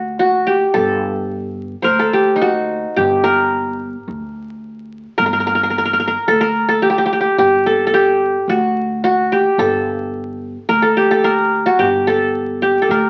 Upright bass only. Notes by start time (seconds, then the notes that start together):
Already playing: D2
0.76 G1
1.86 D2
2.97 G1
4.08 D2
5.18 G1
6.28 D2
7.38 G1
8.48 D2
9.58 G1
10.69 D2
11.79 G1
12.89 D2